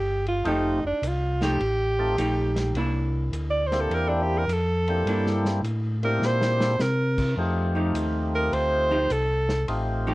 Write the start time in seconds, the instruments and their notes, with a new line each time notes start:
Already playing: tonewheel organ G1, alto saxophone G4
0.27 alto saxophone F4, ride
0.45 tonewheel organ F1 A3 C4 D#4 F4 G4, hollow-body jazz guitar F3 A3 D#4 G4, alto saxophone D#4, ride
0.83 tonewheel organ F1, alto saxophone D4
1.02 tonewheel organ C2, hi-hat pedal, ride
1.07 alto saxophone F4
1.41 hollow-body jazz guitar F3 A3 D#4 G4, alto saxophone G4, snare, ride
1.60 tonewheel organ A1, ride
1.99 tonewheel organ A3 C4 D#4 F4 A4
2.18 tonewheel organ A#1, hollow-body jazz guitar F3 A3 D#4 G4, hi-hat pedal, ride
2.56 snare, ride
2.74 tonewheel organ C2, hollow-body jazz guitar A#3 D4, ride
2.78 hollow-body jazz guitar E4
3.32 tonewheel organ D2, hi-hat pedal, ride
3.50 alto saxophone D5
3.67 alto saxophone C5
3.72 tonewheel organ A#3 C4 D4 E4 G4, snare, ride
3.81 alto saxophone A4
3.90 tonewheel organ E2, ride
3.95 alto saxophone A#4
4.09 alto saxophone D4
4.23 alto saxophone G4
4.38 alto saxophone A#4
4.47 tonewheel organ F2, hi-hat pedal, ride
4.53 alto saxophone A4
4.88 tonewheel organ A#3 C4 D4 E4 G4, ride
5.05 tonewheel organ G2, hollow-body jazz guitar A#3 D4 E4, ride
5.26 snare
5.45 snare
5.62 tonewheel organ A2, hi-hat pedal, ride
6.03 tonewheel organ A#3 C4 D4 E4 G4, alto saxophone A#4, ride
6.19 tonewheel organ A#2, snare
6.25 alto saxophone C5
6.41 snare
6.60 snare
6.79 tonewheel organ C3, alto saxophone A#4, snare, hi-hat pedal
7.18 kick, crash
7.37 tonewheel organ F2 A3 C4 D#4 F4 G4
7.75 hollow-body jazz guitar F3 A3 D#4 G4
7.94 tonewheel organ D#2, hi-hat pedal, ride
8.35 alto saxophone A#4
8.52 tonewheel organ D2, alto saxophone C5, ride
8.90 hollow-body jazz guitar F3 A3 D#4 G4
9.10 tonewheel organ C2, alto saxophone A4, hi-hat pedal, ride
9.49 snare
9.68 tonewheel organ A1 A3 C4 D#4 F4 G4, ride
10.07 hollow-body jazz guitar F3 A3 D#4 G4